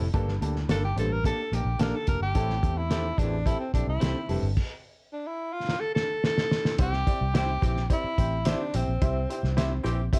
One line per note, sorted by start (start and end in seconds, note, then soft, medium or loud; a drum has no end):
0.00 0.12 F1 medium
0.13 0.38 G1 medium
0.13 0.93 G2 medium
0.13 0.36 G2 medium
0.13 0.28 A#3 loud
0.13 0.28 D4 loud
0.13 0.28 G4 loud
0.13 0.28 A4 loud
0.13 kick loud
0.13 closed hi-hat medium
0.28 snare soft
0.41 0.65 D2 medium
0.41 0.56 A#3 medium
0.41 0.56 D4 medium
0.41 0.56 G4 medium
0.41 0.56 A4 medium
0.41 closed hi-hat medium
0.56 snare soft
0.68 0.92 G1 loud
0.68 0.84 A#3 medium
0.68 0.84 D4 medium
0.68 0.84 G4 medium
0.68 0.84 A4 medium
0.68 0.85 A4 medium
0.68 0.83 A4 loud
0.68 snare loud
0.68 closed hi-hat medium
0.84 0.97 G4 loud
0.96 1.32 A1 medium
0.96 1.19 G2 medium
0.96 1.11 A#3 medium
0.96 1.11 D4 medium
0.96 1.11 G4 medium
0.96 1.14 A4 loud
0.96 1.11 C5 medium
0.96 closed hi-hat medium
1.13 1.25 A#4 loud
1.24 1.39 A#3 loud
1.24 1.39 D4 medium
1.24 1.39 G4 medium
1.24 1.39 A4 loud
1.24 1.56 A4 loud
1.24 kick medium
1.24 closed hi-hat medium
1.52 1.64 A#1 medium
1.52 1.67 A#3 medium
1.52 1.67 D4 medium
1.52 1.67 G4 medium
1.52 1.81 G4 medium
1.52 1.67 A#4 medium
1.52 closed hi-hat medium
1.65 1.77 A#1 medium
1.79 1.92 A#1 medium
1.79 1.94 A#3 medium
1.79 1.94 D4 medium
1.79 1.95 D4 medium
1.79 1.94 G4 medium
1.79 1.94 A4 medium
1.79 1.95 A4 medium
1.79 1.97 A#4 medium
1.79 snare loud
1.79 closed hi-hat medium
1.95 2.08 A4 loud
2.07 2.20 F1 medium
2.07 2.22 A#3 medium
2.07 2.22 D4 medium
2.07 2.22 G4 medium
2.07 2.22 A4 medium
2.07 2.21 A#4 loud
2.07 kick medium
2.07 closed hi-hat medium
2.20 2.33 G1 medium
2.20 2.79 G4 loud
2.35 2.59 A1 loud
2.35 2.57 A2 medium
2.35 3.14 A2 medium
2.35 2.50 C4 loud
2.35 2.50 E4 loud
2.35 2.50 G4 medium
2.35 2.50 A4 loud
2.35 kick loud
2.35 closed hi-hat medium
2.50 snare soft
2.62 3.11 E2 medium
2.62 2.77 C4 medium
2.62 2.77 E4 medium
2.62 2.78 G4 medium
2.62 2.78 A4 medium
2.62 kick medium
2.62 closed hi-hat medium
2.78 3.20 E4 loud
2.90 3.05 C4 medium
2.90 3.05 E4 medium
2.90 3.05 G4 medium
2.90 3.06 G4 medium
2.90 3.05 A4 medium
2.90 3.06 A4 medium
2.90 snare loud
2.90 closed hi-hat medium
3.18 3.54 A1 loud
3.18 3.40 E2 medium
3.18 3.33 C4 medium
3.18 3.48 D4 medium
3.18 3.33 E4 medium
3.18 3.33 G4 medium
3.18 3.33 A4 medium
3.18 kick medium
3.18 closed hi-hat medium
3.45 3.61 C4 medium
3.45 3.61 E4 medium
3.45 3.59 E4 loud
3.45 3.60 G4 medium
3.45 3.61 A4 loud
3.45 kick loud
3.45 closed hi-hat medium
3.60 3.73 C4 medium
3.73 3.86 A#1 medium
3.73 3.88 C4 medium
3.73 3.87 D4 medium
3.73 3.88 E4 medium
3.73 3.88 G4 medium
3.73 3.89 A4 medium
3.73 kick medium
3.73 closed hi-hat medium
3.87 3.99 C2 loud
3.87 4.40 E4 medium
4.00 4.14 C2 medium
4.00 4.16 C4 loud
4.00 4.16 C4 medium
4.00 4.16 E4 medium
4.00 4.16 G4 medium
4.00 4.16 G4 loud
4.00 4.16 A4 loud
4.00 4.16 C5 medium
4.00 snare loud
4.00 closed hi-hat medium
4.28 4.41 F1 medium
4.28 4.51 G2 medium
4.28 4.44 C4 medium
4.28 4.44 E4 medium
4.28 4.44 G4 medium
4.28 4.44 A4 medium
4.28 open hi-hat medium
4.43 4.55 G1 medium
4.57 kick loud
4.57 crash medium
5.13 5.28 D4 medium
5.27 5.54 E4 medium
5.53 5.82 F4 medium
5.69 snare medium
5.80 5.94 A4 loud
5.95 6.21 A4 loud
5.95 snare medium
6.24 6.76 A4 loud
6.24 snare medium
6.38 snare medium
6.51 snare loud
6.65 snare loud
6.78 7.03 C2 medium
6.78 7.58 C3 medium
6.78 6.94 C4 loud
6.78 6.94 E4 loud
6.78 6.94 G4 loud
6.78 7.32 G4 loud
6.78 6.94 C5 loud
6.78 6.94 E5 loud
6.78 kick loud
6.78 closed hi-hat medium
6.93 snare soft
7.06 7.21 C4 medium
7.06 7.21 E4 medium
7.06 7.21 G4 medium
7.06 7.21 C5 medium
7.06 7.21 D5 medium
7.06 kick loud
7.06 closed hi-hat medium
7.21 7.57 C2 loud
7.34 7.49 C4 medium
7.34 7.49 E4 medium
7.34 7.49 G4 medium
7.34 7.50 G4 medium
7.34 7.87 G4 loud
7.34 7.49 C5 medium
7.34 7.50 C5 loud
7.34 7.49 G5 loud
7.34 snare loud
7.34 closed hi-hat medium
7.62 7.86 A#1 loud
7.62 7.80 E3 medium
7.62 7.80 C4 medium
7.62 7.77 C4 medium
7.62 7.77 E4 medium
7.62 7.80 G4 loud
7.62 7.77 G4 medium
7.62 7.77 C5 medium
7.62 7.77 G5 medium
7.62 kick medium
7.62 closed hi-hat medium
7.77 snare soft
7.90 8.05 C4 medium
7.90 8.05 E4 medium
7.90 8.50 E4 loud
7.90 8.05 G4 medium
7.90 8.05 C5 medium
7.90 8.05 D5 medium
7.90 kick medium
7.90 closed hi-hat medium
8.04 muted fingered electric bass stroke soft
8.18 8.54 A1 medium
8.18 8.33 C4 medium
8.18 8.33 E4 medium
8.18 8.33 G4 medium
8.18 8.33 C5 medium
8.18 8.33 G5 medium
8.18 kick medium
8.18 closed hi-hat medium
8.45 8.60 C4 loud
8.45 8.77 D4 loud
8.45 8.60 E4 medium
8.45 8.60 E4 loud
8.45 8.60 G4 medium
8.45 8.61 G4 loud
8.45 8.60 C5 medium
8.45 8.61 C5 loud
8.45 8.60 E5 loud
8.45 snare loud
8.45 closed hi-hat medium
8.74 8.86 A#1 medium
8.74 8.88 C4 medium
8.74 9.86 C4 medium
8.74 8.88 E4 medium
8.74 8.89 G4 medium
8.74 8.89 C5 medium
8.74 8.89 G5 medium
8.74 closed hi-hat medium
8.88 8.99 A#1 medium
9.01 9.25 C2 loud
9.01 9.81 C3 medium
9.01 9.16 C4 loud
9.01 9.16 E4 loud
9.01 9.16 G4 medium
9.01 9.16 C5 medium
9.01 9.16 E5 loud
9.01 kick loud
9.01 closed hi-hat medium
9.29 9.44 C4 medium
9.29 9.44 E4 medium
9.29 9.44 G4 medium
9.29 9.44 C5 medium
9.29 9.44 G5 medium
9.29 closed hi-hat medium
9.43 9.79 C2 loud
9.43 snare soft
9.57 9.72 C4 loud
9.57 9.71 E4 loud
9.57 9.72 E4 medium
9.57 9.72 G4 loud
9.57 9.72 G4 medium
9.57 9.72 C5 loud
9.57 9.72 C5 medium
9.57 9.72 E5 loud
9.57 snare loud
9.57 closed hi-hat medium
9.83 10.08 A#1 medium
9.83 10.01 E3 loud
9.83 10.02 C4 medium
9.83 9.99 C4 medium
9.83 9.99 E4 medium
9.83 10.02 G4 loud
9.83 9.99 G4 medium
9.83 9.99 C5 medium
9.83 9.99 E5 loud
9.83 closed hi-hat medium
10.13 10.20 C4 medium
10.13 10.20 E4 medium
10.13 10.20 G4 medium
10.13 10.20 C5 medium
10.13 10.20 E5 loud
10.13 kick medium
10.13 closed hi-hat medium